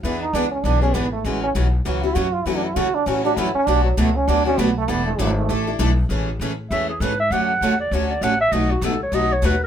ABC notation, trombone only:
X:1
M:4/4
L:1/8
Q:"Swing" 1/4=198
K:A
V:1 name="Trombone"
E ^D =D C D C B, A, | G, C z2 F E F =F | (3E D E F D C D E C | D F, A, C D C B, A, |
B, A, F, A,3 z2 | z8 | z8 | z8 |]